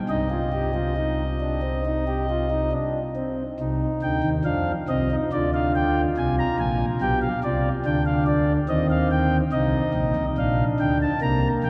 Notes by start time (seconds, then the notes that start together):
0.09 C2 C3 D#4 D#5
0.30 F4
0.52 G4
0.74 F4
0.96 D#4
1.41 D4
1.62 C4
1.86 D#4
2.08 G4
2.30 F4
2.51 D#4
2.72 D4
3.16 C4
3.60 C2 C3 D#4
4.02 D2 D3 G5
4.24 D#2 D#3
4.45 F2 F3 D4 F5
4.89 C2 C3 C4 D#5
5.11 D#4
5.32 D2 D3 F4 D5
5.54 F5
5.76 G5
6.17 C2 C3 G#5
6.39 A#5
6.59 A#1 A#2 G#5
7.01 B1 B2 G4 G5
7.22 F5
7.44 C2 C3 F4 D5
7.86 D2 D3 D4 G5
8.06 F5
8.27 D5
8.69 D#2 D#3 C4 D#5
8.90 F5
9.11 G5
9.52 C2 C3 D#4 D#5
9.94 A#1 A#2
10.16 C2 C3
10.38 A#1 A#2 D4 F5
10.80 D2 D3 G5
11.02 A5
11.22 C2 C3 A#3 A#5
11.64 A#1 A#2 G5